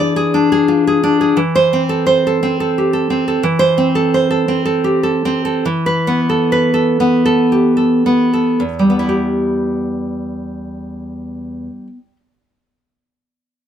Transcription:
Already playing: E3 D4 G#4
0.00 D5
0.16 G#4
0.34 D4
0.52 G#4
0.68 F4
0.87 G#4
1.03 D4
1.21 G#4
1.37 E3
1.55 C5
1.73 C4
1.89 A4
2.07 C5
2.27 A4
2.43 C4
2.60 A4
2.78 G4
2.93 A4
3.10 C4
3.28 A4
3.43 E3
3.59 C5
3.78 C4
3.95 A4
4.14 C5
4.31 A4
4.48 C4
4.66 A4
4.84 G4
5.03 A4
5.25 C4
5.45 A4
5.65 E3
5.86 B4
6.07 B3
6.30 A4
6.52 B4
6.74 A4
7.00 B3
7.26 A4
7.52 G4
7.77 A4
8.06 B3
8.33 A4
8.60 E2
8.79 G3
8.90 B3
8.99 E4
9.09 G4

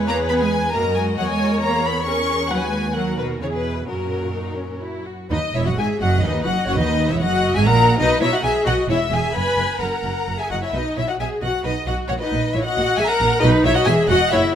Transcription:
Already playing: E2 G#4 B4 C#5
0.08 A#3 A#5
0.29 B3 B4 B5
0.40 G#3 G#5
0.73 F#2 A#3 F#4 A#4 D#5 A#5
0.96 G#3 G#5
1.18 E2 F#3 A#4 C#5 F#5
1.29 G#3 G#5
1.62 A#3 C#5 A#5
1.85 B3 B5
2.07 C#4 G#4 A#4 C#5 C#6
2.51 D#2 F#3 F#4 B4 F#5
2.63 G#3 G#5
2.95 F#3 F#4 A#4 F#5
3.18 B2 B4
3.41 E2 C#3 E4 G#4 C#5
3.53 B2 B4
3.87 F#2 A#2 C#4 F#4 A#4
4.33 D#4
4.58 C#4
4.82 E4
5.07 F#4
5.30 D#2 D#4 B4 D#5
5.53 E1 E2 E4 C#5 E5
5.66 F#2 F#4 D#5 F#5
5.77 G#1 G#2 G#4 E5 G#5
5.99 F#1 F#2 F#4 D#5 F#5
6.22 D#2 D#4 B4 D#5
6.44 F#1 F#2 F#4 D#5 F#5
6.67 F#1 F#2 F#4 C#5 F#5
6.78 D#2 D#4 B4 D#5
7.11 E1 E2 E4 C#5 E5
7.22 F#1 F#2 F#4 D#5 F#5
7.55 G#1 G#2 G#4 E5 G#5
7.66 A#1 A#2 A#4 F#5 A#5
7.99 B1 B2 D#4 B4 D#5
8.21 B1 B2 E4 C#5 E5
8.33 F#4 D#5 F#5
8.43 B1 B2 G#4 E5 G#5
8.66 B1 B2 F#4 D#5 F#5
8.88 E1 E2 E4 C#5 E5
9.10 E1 E2 G#4 E5 G#5
9.34 F#1 F#2 B4 G#5 B5
9.57 F#1 F#2
9.80 F#1 F#2 A#4 F#5 A#5
10.03 F#1 F#2
10.26 F#1 F#2
10.39 G#4 E5 G#5
10.50 F#1 F#2 F#4 D#5 F#5
10.62 E4 C#5 E5
10.72 B1 B2 D#4 B4 D#5
10.96 B1 B2 E4 C#5 E5
11.07 F#4 D#5 F#5
11.19 B1 B2 G#4 E5 G#5
11.42 B1 B2 F#4 D#5 F#5
11.64 B1 B2 D#4 B4 D#5
11.86 B1 B2 F#4 D#5 F#5
12.08 A#1 A#2 F#4 C#5 F#5
12.21 D#4 B4 D#5
12.32 A#1 A#2
12.53 A#1 A#2 E4 C#5 E5
12.64 F#4 D#5 F#5
12.76 A#1 A#2
12.98 A#1 A#2 G#4 E5 G#5
13.08 A#4 F#5 A#5
13.20 A#1 A#2
13.41 B1 B2 D#4 B4 D#5
13.64 B1 B2 E4 C#5 E5
13.75 F#4 D#5 F#5
13.85 E1 E2 G#4 E5 G#5
14.08 E1 E2 F#4 D#5 F#5
14.31 F#1 F#2 E4 C#5 E5

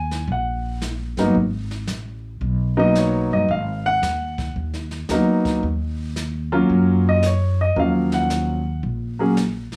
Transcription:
Already playing: D#2 G#5
0.11 snare
0.27 A#1, brush sweep, kick
0.32 F#5
0.82 snare, hi-hat pedal
1.17 G1 F#3 A#3 B3 D#4, snare
1.34 G#1, brush sweep, kick
1.71 snare
1.87 A1, snare, hi-hat pedal
2.41 B1, brush sweep, kick
2.77 F#3 A#3 B3 D#4 D#5
2.95 C#5, snare, hi-hat pedal
3.31 G1 D#5
3.48 G#1 F5, brush sweep, kick
3.86 F#5
4.02 D#2, snare, hi-hat pedal
4.38 kick, snare
4.56 D#2, brush sweep, kick
4.74 snare
4.91 snare
5.09 D2 F#3 A#3 B3 D#4, snare, hi-hat pedal
5.45 kick, snare
5.63 D#2, brush sweep, kick
6.16 snare, hi-hat pedal
6.52 F#3 A#3 C#4 F4
6.69 F#2, brush sweep, kick
7.09 D#5
7.22 C#5, snare, hi-hat pedal
7.61 D#5
7.76 D#2 F3 F#3 A#3 C#4 F5, brush sweep, kick
8.12 F#5, snare
8.30 snare, hi-hat pedal
8.83 A#1, brush sweep, kick
9.19 F#3 A#3 C#4 G#4
9.37 snare, hi-hat pedal
9.72 muted upright bass stroke, snare

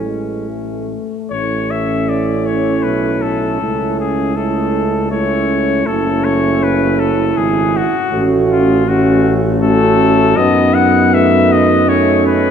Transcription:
Already playing: A1 E3 C#4 A4
0.06 G#3
0.48 A3
1.31 A1 A3 C#4 E4 C#5
1.71 E5
2.09 D5
2.46 C#5
2.83 B1 B4
3.22 A4
3.60 C#2 A3 C#4 E4
4.00 G#4
4.36 A3 C#4 E4 A4
5.11 A3 C#4 E4 C#5
5.85 F#1 A3 C#4 E4 A4
6.25 C#5
6.63 B4
6.99 A4
7.37 G#1 G#4
7.77 F#4
8.12 A1 A3 C#4 F#4
8.51 F4
8.87 A3 C#4 F#4
9.62 A3 C#4 F#4 A4
10.37 F#2 B3 D#4 D#5
10.74 F#5
11.14 A3 E5
11.52 D#5
11.88 A3 C#4 C#5
12.27 B4

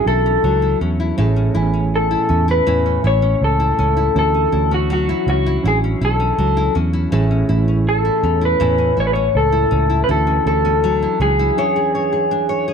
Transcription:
Already playing: E3 F#3 C#4 D4 E4 F#4 G#4
0.06 B1 E4 A4
0.26 C#4
0.44 C#2 F#3
0.62 E4
0.81 E2 C#4
1.00 E4
1.17 A1 A2 E3 A3 C#4 E4 G#4
1.36 C#4
1.54 A1 E3 A3 B3 E4 G#5
1.63 C#4
1.73 C#4
1.96 A4
2.11 E4
2.29 E2 C#4
2.48 E4 B4
2.66 E2 A2 E3 A3 C#4 E4 G#5
2.86 C#4
3.04 A1 E4 C#5
3.22 C#4
3.42 C#2 A4
3.60 E4
3.79 C#2 C#4
3.97 E4
4.14 D2 E3 C#4 D4 E4 F#4
4.19 A4
4.35 C#4
4.51 D2 E3 C#4 D4 E4 F#4
4.71 C#4 F#4
4.90 F#3 F#4
5.09 E4
5.27 C#2 C#4 F#4
5.46 E4
5.62 A1 E3 C#4 D4 E4 F#4
5.68 G#4
5.84 C#4
6.01 B1 E4 A4
6.20 C#4
6.38 C#2 F#3
6.57 E4
6.75 E2 C#4
6.93 E4
7.11 A1 A2 E3 A3 C#4 E4 G#4
7.31 C#4
7.48 A1 E3 A3 C#4 E4
7.68 C#4
7.89 A4
8.05 E4
8.24 E2 C#4
8.41 E4 B4
8.60 E2 A2 E3 A3 C#4 E4 G#5
8.78 C#4
8.97 A1 E4 C#5
9.07 B4
9.13 C#4 C#5
9.35 C#2 A4
9.52 E4
9.71 C#2 C#4
9.90 E4
10.04 E3 B4
10.08 D2 C#4 D4 E4 F#4 A4
10.27 C#4
10.44 D2 E3 C#4 D4 E4 F#4 A4
10.65 C#4
10.84 F#3
11.02 E4
11.20 C#2 C#4 G#4
11.39 E4
11.55 E2 E3 F#3 C#4 D4 G#4 C#5
11.76 G#4
11.95 C#5
12.13 G#4
12.31 D4
12.49 C#5
12.68 G#4

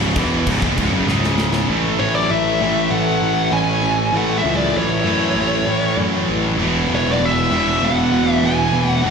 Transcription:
Already playing: C#1 C#2 G#2 C#3
0.16 E1 E2 B2 E3, kick, crash
0.47 C#1 C#2 G#2, kick, crash
0.61 F#1 F#2 C#3, kick
0.77 C#1 C#2 G#2, kick, crash
0.92 F#1 F#2 C#3
1.07 C#1 C#2 G#2 C#3, snare
1.24 snare
1.38 snare
1.53 snare
1.68 A1 A2 E3 A3
2.00 A1 E3 C#5
2.15 F#3 D5
2.30 A1 A3 E5
2.61 A1 A2 E3 A3
2.91 A1 A3 F#5
3.22 A1
3.52 A1 C#4 G#5
3.83 A1
4.12 A1 A2 E3 A3
4.17 A3 F#5
4.37 G#3 E5
4.44 C#2
4.55 F#3 D5
4.75 A1 E3 C#5
5.04 F#2 E3 A3
5.08 A2
5.34 A1
5.67 A2
5.97 F#2
6.29 A1
6.57 E1 E2 B2 E3
6.89 E1
6.95 E3 C#5
7.08 F#3 D5
7.20 E1 G#3
7.25 E5
7.49 E1 E2 B2 E3
7.82 E1 B3 F#5
8.12 E1
8.26 A3
8.32 E5
8.42 E1 B3
8.46 G#5
8.73 E1
8.87 A3 F#5
9.03 E1 E2 B2 B3 F#5
9.07 E3

